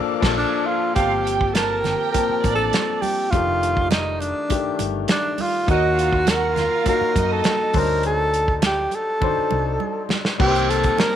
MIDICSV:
0, 0, Header, 1, 8, 480
1, 0, Start_track
1, 0, Tempo, 589971
1, 783, Time_signature, 4, 2, 24, 8
1, 9077, End_track
2, 0, Start_track
2, 0, Title_t, "Violin section"
2, 0, Program_c, 0, 48
2, 775, Note_on_c, 0, 65, 89
2, 778, Note_on_c, 0, 77, 107
2, 970, Note_off_c, 0, 65, 0
2, 972, Note_off_c, 0, 77, 0
2, 1011, Note_on_c, 0, 67, 76
2, 1012, Note_on_c, 0, 79, 77
2, 1208, Note_off_c, 0, 67, 0
2, 1209, Note_off_c, 0, 79, 0
2, 1255, Note_on_c, 0, 69, 76
2, 1264, Note_on_c, 0, 81, 84
2, 1451, Note_off_c, 0, 69, 0
2, 1456, Note_off_c, 0, 81, 0
2, 1485, Note_on_c, 0, 67, 70
2, 1494, Note_on_c, 0, 79, 92
2, 1945, Note_off_c, 0, 67, 0
2, 1950, Note_off_c, 0, 79, 0
2, 1977, Note_on_c, 0, 74, 94
2, 1982, Note_on_c, 0, 62, 82
2, 2432, Note_off_c, 0, 74, 0
2, 2434, Note_off_c, 0, 62, 0
2, 4609, Note_on_c, 0, 63, 104
2, 4615, Note_on_c, 0, 75, 104
2, 4807, Note_off_c, 0, 63, 0
2, 4811, Note_off_c, 0, 75, 0
2, 4839, Note_on_c, 0, 65, 82
2, 4839, Note_on_c, 0, 77, 79
2, 5041, Note_off_c, 0, 77, 0
2, 5042, Note_off_c, 0, 65, 0
2, 5087, Note_on_c, 0, 66, 87
2, 5091, Note_on_c, 0, 78, 86
2, 5286, Note_off_c, 0, 66, 0
2, 5288, Note_off_c, 0, 78, 0
2, 5324, Note_on_c, 0, 65, 85
2, 5329, Note_on_c, 0, 77, 93
2, 5785, Note_off_c, 0, 65, 0
2, 5788, Note_off_c, 0, 77, 0
2, 5812, Note_on_c, 0, 75, 93
2, 5818, Note_on_c, 0, 63, 86
2, 6269, Note_off_c, 0, 75, 0
2, 6272, Note_off_c, 0, 63, 0
2, 9077, End_track
3, 0, Start_track
3, 0, Title_t, "Tenor saxophone"
3, 0, Program_c, 1, 66
3, 304, Note_on_c, 1, 62, 93
3, 539, Note_on_c, 1, 65, 96
3, 552, Note_off_c, 1, 62, 0
3, 768, Note_off_c, 1, 65, 0
3, 773, Note_on_c, 1, 67, 88
3, 1249, Note_on_c, 1, 70, 94
3, 1261, Note_off_c, 1, 67, 0
3, 1713, Note_off_c, 1, 70, 0
3, 1718, Note_on_c, 1, 70, 85
3, 2065, Note_off_c, 1, 70, 0
3, 2075, Note_on_c, 1, 69, 96
3, 2452, Note_on_c, 1, 67, 92
3, 2464, Note_off_c, 1, 69, 0
3, 2691, Note_on_c, 1, 65, 96
3, 2704, Note_off_c, 1, 67, 0
3, 3173, Note_off_c, 1, 65, 0
3, 3178, Note_on_c, 1, 63, 81
3, 3420, Note_on_c, 1, 62, 74
3, 3432, Note_off_c, 1, 63, 0
3, 3922, Note_off_c, 1, 62, 0
3, 4158, Note_on_c, 1, 62, 89
3, 4405, Note_on_c, 1, 65, 84
3, 4417, Note_off_c, 1, 62, 0
3, 4635, Note_off_c, 1, 65, 0
3, 4638, Note_on_c, 1, 66, 98
3, 5122, Note_on_c, 1, 70, 108
3, 5134, Note_off_c, 1, 66, 0
3, 5594, Note_off_c, 1, 70, 0
3, 5604, Note_on_c, 1, 70, 97
3, 5956, Note_on_c, 1, 69, 97
3, 5969, Note_off_c, 1, 70, 0
3, 6329, Note_on_c, 1, 70, 102
3, 6341, Note_off_c, 1, 69, 0
3, 6554, Note_off_c, 1, 70, 0
3, 6559, Note_on_c, 1, 69, 101
3, 6999, Note_off_c, 1, 69, 0
3, 7045, Note_on_c, 1, 67, 89
3, 7280, Note_on_c, 1, 69, 89
3, 7293, Note_off_c, 1, 67, 0
3, 8231, Note_off_c, 1, 69, 0
3, 8463, Note_on_c, 1, 67, 99
3, 8700, Note_on_c, 1, 69, 109
3, 8712, Note_off_c, 1, 67, 0
3, 8938, Note_on_c, 1, 70, 110
3, 8950, Note_off_c, 1, 69, 0
3, 9077, Note_off_c, 1, 70, 0
3, 9077, End_track
4, 0, Start_track
4, 0, Title_t, "Grand piano"
4, 0, Program_c, 2, 0
4, 0, Control_c, 2, 64, 127
4, 0, Note_on_c, 2, 53, 90
4, 0, Note_on_c, 2, 58, 98
4, 0, Note_on_c, 2, 62, 102
4, 0, Note_on_c, 2, 69, 90
4, 164, Note_off_c, 2, 53, 0
4, 164, Note_on_c, 2, 53, 95
4, 177, Note_off_c, 2, 58, 0
4, 177, Note_on_c, 2, 58, 86
4, 181, Note_off_c, 2, 62, 0
4, 181, Note_on_c, 2, 62, 99
4, 187, Note_off_c, 2, 69, 0
4, 187, Note_on_c, 2, 69, 93
4, 335, Note_off_c, 2, 53, 0
4, 343, Note_off_c, 2, 58, 0
4, 345, Note_off_c, 2, 62, 0
4, 349, Note_off_c, 2, 69, 0
4, 771, Note_on_c, 2, 53, 63
4, 779, Note_on_c, 2, 58, 53
4, 789, Note_on_c, 2, 60, 60
4, 792, Note_on_c, 2, 81, 68
4, 795, Control_c, 2, 64, 0
4, 943, Control_c, 2, 64, 127
4, 1654, Note_off_c, 2, 53, 0
4, 1658, Note_off_c, 2, 58, 0
4, 1663, Note_off_c, 2, 60, 0
4, 1665, Note_off_c, 2, 81, 0
4, 1736, Note_on_c, 2, 53, 70
4, 1743, Note_on_c, 2, 58, 65
4, 1751, Note_on_c, 2, 60, 59
4, 1759, Note_on_c, 2, 81, 74
4, 2618, Note_off_c, 2, 53, 0
4, 2621, Note_off_c, 2, 58, 0
4, 2625, Note_off_c, 2, 60, 0
4, 2629, Note_off_c, 2, 81, 0
4, 2700, Note_on_c, 2, 51, 68
4, 2707, Note_on_c, 2, 57, 56
4, 2715, Note_on_c, 2, 62, 59
4, 2716, Control_c, 2, 64, 0
4, 2722, Note_on_c, 2, 67, 66
4, 2834, Control_c, 2, 64, 127
4, 3580, Note_off_c, 2, 51, 0
4, 3583, Note_off_c, 2, 57, 0
4, 3587, Note_off_c, 2, 62, 0
4, 3591, Note_off_c, 2, 67, 0
4, 3652, Note_on_c, 2, 51, 72
4, 3661, Note_on_c, 2, 57, 60
4, 3667, Note_on_c, 2, 62, 62
4, 3675, Note_on_c, 2, 67, 75
4, 4536, Note_off_c, 2, 51, 0
4, 4540, Note_off_c, 2, 57, 0
4, 4543, Note_off_c, 2, 62, 0
4, 4547, Note_off_c, 2, 67, 0
4, 4611, Note_on_c, 2, 54, 70
4, 4618, Note_on_c, 2, 58, 55
4, 4625, Note_on_c, 2, 63, 60
4, 4634, Note_on_c, 2, 70, 77
4, 4636, Control_c, 2, 64, 0
4, 4753, Control_c, 2, 64, 127
4, 5495, Note_off_c, 2, 54, 0
4, 5499, Note_off_c, 2, 58, 0
4, 5502, Note_off_c, 2, 63, 0
4, 5507, Note_off_c, 2, 70, 0
4, 5567, Note_on_c, 2, 54, 71
4, 5576, Note_on_c, 2, 58, 67
4, 5581, Note_on_c, 2, 63, 68
4, 5588, Note_on_c, 2, 66, 84
4, 6278, Note_off_c, 2, 54, 0
4, 6290, Note_on_c, 2, 54, 78
4, 6293, Note_off_c, 2, 63, 0
4, 6299, Note_on_c, 2, 62, 72
4, 6300, Note_off_c, 2, 58, 0
4, 6305, Note_on_c, 2, 63, 70
4, 6306, Note_off_c, 2, 66, 0
4, 6313, Note_on_c, 2, 72, 80
4, 6316, Control_c, 2, 64, 0
4, 6438, Control_c, 2, 64, 127
4, 7174, Note_off_c, 2, 54, 0
4, 7179, Note_off_c, 2, 62, 0
4, 7182, Note_off_c, 2, 63, 0
4, 7186, Note_off_c, 2, 72, 0
4, 7490, Note_on_c, 2, 54, 69
4, 7494, Note_on_c, 2, 62, 70
4, 7506, Note_on_c, 2, 63, 67
4, 7513, Note_on_c, 2, 72, 81
4, 8373, Note_off_c, 2, 54, 0
4, 8375, Note_off_c, 2, 62, 0
4, 8382, Note_off_c, 2, 63, 0
4, 8385, Note_off_c, 2, 72, 0
4, 8447, Note_on_c, 2, 58, 76
4, 8454, Note_on_c, 2, 60, 64
4, 8460, Note_on_c, 2, 63, 69
4, 8460, Note_on_c, 2, 67, 62
4, 8468, Note_on_c, 2, 71, 60
4, 8472, Control_c, 2, 64, 0
4, 8518, Note_off_c, 2, 71, 0
4, 8523, Note_on_c, 2, 72, 82
4, 8638, Control_c, 2, 64, 127
4, 9077, Note_off_c, 2, 58, 0
4, 9077, Note_off_c, 2, 60, 0
4, 9077, Note_off_c, 2, 63, 0
4, 9077, Note_off_c, 2, 67, 0
4, 9077, Note_off_c, 2, 72, 0
4, 9077, End_track
5, 0, Start_track
5, 0, Title_t, "String section"
5, 0, Program_c, 3, 48
5, 0, Note_on_c, 3, 58, 76
5, 0, Note_on_c, 3, 77, 71
5, 0, Note_on_c, 3, 81, 77
5, 0, Note_on_c, 3, 86, 88
5, 752, Note_off_c, 3, 58, 0
5, 766, Note_off_c, 3, 77, 0
5, 767, Note_off_c, 3, 81, 0
5, 768, Note_off_c, 3, 86, 0
5, 8454, Note_on_c, 3, 55, 69
5, 8454, Note_on_c, 3, 58, 67
5, 8457, Note_on_c, 3, 51, 75
5, 8459, Note_on_c, 3, 67, 83
5, 8463, Note_on_c, 3, 60, 72
5, 9077, Note_off_c, 3, 51, 0
5, 9077, Note_off_c, 3, 55, 0
5, 9077, Note_off_c, 3, 58, 0
5, 9077, Note_off_c, 3, 60, 0
5, 9077, Note_off_c, 3, 67, 0
5, 9077, End_track
6, 0, Start_track
6, 0, Title_t, "Fingered electric bass"
6, 0, Program_c, 4, 33
6, 186, Note_on_c, 4, 34, 95
6, 348, Note_off_c, 4, 34, 0
6, 783, Note_on_c, 4, 31, 89
6, 1591, Note_off_c, 4, 31, 0
6, 1991, Note_on_c, 4, 33, 69
6, 2189, Note_off_c, 4, 33, 0
6, 2708, Note_on_c, 4, 29, 99
6, 3514, Note_off_c, 4, 29, 0
6, 3906, Note_on_c, 4, 31, 75
6, 4107, Note_off_c, 4, 31, 0
6, 4625, Note_on_c, 4, 39, 93
6, 5432, Note_off_c, 4, 39, 0
6, 5824, Note_on_c, 4, 42, 80
6, 6026, Note_off_c, 4, 42, 0
6, 6303, Note_on_c, 4, 38, 88
6, 7208, Note_off_c, 4, 38, 0
6, 7745, Note_on_c, 4, 36, 72
6, 7945, Note_off_c, 4, 36, 0
6, 8462, Note_on_c, 4, 36, 100
6, 8864, Note_off_c, 4, 36, 0
6, 9077, End_track
7, 0, Start_track
7, 0, Title_t, "Muted fingered electric bass strokes"
7, 1866, Note_on_c, 9, 29, 44
7, 1948, Note_off_c, 9, 29, 0
7, 5705, Note_on_c, 9, 29, 43
7, 5787, Note_off_c, 9, 29, 0
7, 7632, Note_on_c, 9, 29, 43
7, 7713, Note_off_c, 9, 29, 0
7, 9077, End_track
8, 0, Start_track
8, 0, Title_t, "Drums"
8, 183, Note_on_c, 9, 36, 99
8, 184, Note_on_c, 9, 49, 83
8, 190, Note_on_c, 9, 38, 94
8, 265, Note_off_c, 9, 36, 0
8, 266, Note_off_c, 9, 49, 0
8, 271, Note_off_c, 9, 38, 0
8, 779, Note_on_c, 9, 42, 65
8, 783, Note_on_c, 9, 36, 93
8, 860, Note_off_c, 9, 42, 0
8, 865, Note_off_c, 9, 36, 0
8, 1032, Note_on_c, 9, 42, 66
8, 1113, Note_off_c, 9, 42, 0
8, 1146, Note_on_c, 9, 36, 76
8, 1227, Note_off_c, 9, 36, 0
8, 1260, Note_on_c, 9, 42, 85
8, 1263, Note_on_c, 9, 63, 67
8, 1265, Note_on_c, 9, 38, 92
8, 1341, Note_off_c, 9, 42, 0
8, 1345, Note_off_c, 9, 63, 0
8, 1347, Note_off_c, 9, 38, 0
8, 1499, Note_on_c, 9, 64, 66
8, 1505, Note_on_c, 9, 38, 34
8, 1506, Note_on_c, 9, 42, 46
8, 1580, Note_off_c, 9, 64, 0
8, 1587, Note_off_c, 9, 38, 0
8, 1587, Note_off_c, 9, 42, 0
8, 1744, Note_on_c, 9, 62, 51
8, 1745, Note_on_c, 9, 42, 80
8, 1746, Note_on_c, 9, 36, 76
8, 1825, Note_off_c, 9, 62, 0
8, 1826, Note_off_c, 9, 42, 0
8, 1827, Note_off_c, 9, 36, 0
8, 1984, Note_on_c, 9, 62, 49
8, 1987, Note_on_c, 9, 36, 87
8, 1990, Note_on_c, 9, 42, 68
8, 2065, Note_off_c, 9, 62, 0
8, 2068, Note_off_c, 9, 36, 0
8, 2071, Note_off_c, 9, 42, 0
8, 2220, Note_on_c, 9, 63, 57
8, 2221, Note_on_c, 9, 42, 74
8, 2231, Note_on_c, 9, 38, 93
8, 2302, Note_off_c, 9, 42, 0
8, 2302, Note_off_c, 9, 63, 0
8, 2312, Note_off_c, 9, 38, 0
8, 2459, Note_on_c, 9, 63, 61
8, 2464, Note_on_c, 9, 46, 65
8, 2540, Note_off_c, 9, 63, 0
8, 2546, Note_off_c, 9, 46, 0
8, 2705, Note_on_c, 9, 42, 68
8, 2706, Note_on_c, 9, 36, 108
8, 2786, Note_off_c, 9, 42, 0
8, 2788, Note_off_c, 9, 36, 0
8, 2953, Note_on_c, 9, 42, 61
8, 3035, Note_off_c, 9, 42, 0
8, 3065, Note_on_c, 9, 36, 78
8, 3147, Note_off_c, 9, 36, 0
8, 3178, Note_on_c, 9, 63, 62
8, 3184, Note_on_c, 9, 42, 83
8, 3190, Note_on_c, 9, 38, 99
8, 3259, Note_off_c, 9, 63, 0
8, 3266, Note_off_c, 9, 42, 0
8, 3271, Note_off_c, 9, 38, 0
8, 3420, Note_on_c, 9, 62, 28
8, 3431, Note_on_c, 9, 42, 45
8, 3502, Note_off_c, 9, 62, 0
8, 3512, Note_off_c, 9, 42, 0
8, 3660, Note_on_c, 9, 62, 50
8, 3663, Note_on_c, 9, 42, 78
8, 3664, Note_on_c, 9, 36, 84
8, 3741, Note_off_c, 9, 62, 0
8, 3745, Note_off_c, 9, 42, 0
8, 3746, Note_off_c, 9, 36, 0
8, 3898, Note_on_c, 9, 62, 49
8, 3903, Note_on_c, 9, 42, 70
8, 3979, Note_off_c, 9, 62, 0
8, 3985, Note_off_c, 9, 42, 0
8, 4133, Note_on_c, 9, 42, 79
8, 4140, Note_on_c, 9, 63, 61
8, 4144, Note_on_c, 9, 38, 101
8, 4215, Note_off_c, 9, 42, 0
8, 4222, Note_off_c, 9, 63, 0
8, 4225, Note_off_c, 9, 38, 0
8, 4376, Note_on_c, 9, 46, 59
8, 4378, Note_on_c, 9, 63, 65
8, 4457, Note_off_c, 9, 46, 0
8, 4459, Note_off_c, 9, 63, 0
8, 4622, Note_on_c, 9, 36, 106
8, 4623, Note_on_c, 9, 42, 64
8, 4704, Note_off_c, 9, 36, 0
8, 4705, Note_off_c, 9, 42, 0
8, 4872, Note_on_c, 9, 42, 68
8, 4953, Note_off_c, 9, 42, 0
8, 4984, Note_on_c, 9, 36, 78
8, 5065, Note_off_c, 9, 36, 0
8, 5100, Note_on_c, 9, 63, 68
8, 5103, Note_on_c, 9, 42, 95
8, 5108, Note_on_c, 9, 38, 103
8, 5182, Note_off_c, 9, 63, 0
8, 5184, Note_off_c, 9, 42, 0
8, 5190, Note_off_c, 9, 38, 0
8, 5339, Note_on_c, 9, 64, 59
8, 5346, Note_on_c, 9, 38, 35
8, 5347, Note_on_c, 9, 42, 50
8, 5420, Note_off_c, 9, 64, 0
8, 5428, Note_off_c, 9, 38, 0
8, 5428, Note_off_c, 9, 42, 0
8, 5578, Note_on_c, 9, 42, 76
8, 5581, Note_on_c, 9, 62, 53
8, 5582, Note_on_c, 9, 36, 89
8, 5660, Note_off_c, 9, 42, 0
8, 5663, Note_off_c, 9, 36, 0
8, 5663, Note_off_c, 9, 62, 0
8, 5823, Note_on_c, 9, 36, 85
8, 5825, Note_on_c, 9, 62, 47
8, 5827, Note_on_c, 9, 42, 69
8, 5904, Note_off_c, 9, 36, 0
8, 5907, Note_off_c, 9, 62, 0
8, 5908, Note_off_c, 9, 42, 0
8, 6053, Note_on_c, 9, 42, 75
8, 6063, Note_on_c, 9, 38, 100
8, 6064, Note_on_c, 9, 63, 61
8, 6134, Note_off_c, 9, 42, 0
8, 6144, Note_off_c, 9, 38, 0
8, 6146, Note_off_c, 9, 63, 0
8, 6293, Note_on_c, 9, 46, 62
8, 6299, Note_on_c, 9, 36, 99
8, 6300, Note_on_c, 9, 63, 61
8, 6374, Note_off_c, 9, 46, 0
8, 6381, Note_off_c, 9, 36, 0
8, 6381, Note_off_c, 9, 63, 0
8, 6535, Note_on_c, 9, 42, 79
8, 6617, Note_off_c, 9, 42, 0
8, 6783, Note_on_c, 9, 42, 64
8, 6864, Note_off_c, 9, 42, 0
8, 6900, Note_on_c, 9, 36, 80
8, 6981, Note_off_c, 9, 36, 0
8, 7014, Note_on_c, 9, 42, 93
8, 7015, Note_on_c, 9, 63, 64
8, 7019, Note_on_c, 9, 38, 103
8, 7095, Note_off_c, 9, 42, 0
8, 7096, Note_off_c, 9, 63, 0
8, 7100, Note_off_c, 9, 38, 0
8, 7251, Note_on_c, 9, 62, 28
8, 7256, Note_on_c, 9, 42, 47
8, 7333, Note_off_c, 9, 62, 0
8, 7337, Note_off_c, 9, 42, 0
8, 7498, Note_on_c, 9, 36, 81
8, 7499, Note_on_c, 9, 62, 50
8, 7499, Note_on_c, 9, 64, 75
8, 7580, Note_off_c, 9, 36, 0
8, 7581, Note_off_c, 9, 62, 0
8, 7581, Note_off_c, 9, 64, 0
8, 7734, Note_on_c, 9, 62, 51
8, 7815, Note_off_c, 9, 62, 0
8, 7974, Note_on_c, 9, 63, 63
8, 8055, Note_off_c, 9, 63, 0
8, 8209, Note_on_c, 9, 63, 59
8, 8219, Note_on_c, 9, 38, 87
8, 8291, Note_off_c, 9, 63, 0
8, 8301, Note_off_c, 9, 38, 0
8, 8339, Note_on_c, 9, 38, 83
8, 8420, Note_off_c, 9, 38, 0
8, 8458, Note_on_c, 9, 49, 102
8, 8460, Note_on_c, 9, 36, 120
8, 8539, Note_off_c, 9, 49, 0
8, 8541, Note_off_c, 9, 36, 0
8, 8586, Note_on_c, 9, 42, 38
8, 8667, Note_off_c, 9, 42, 0
8, 8709, Note_on_c, 9, 42, 75
8, 8790, Note_off_c, 9, 42, 0
8, 8815, Note_on_c, 9, 42, 46
8, 8823, Note_on_c, 9, 36, 79
8, 8897, Note_off_c, 9, 42, 0
8, 8904, Note_off_c, 9, 36, 0
8, 8936, Note_on_c, 9, 63, 68
8, 8947, Note_on_c, 9, 38, 112
8, 9018, Note_off_c, 9, 63, 0
8, 9028, Note_off_c, 9, 38, 0
8, 9077, End_track
0, 0, End_of_file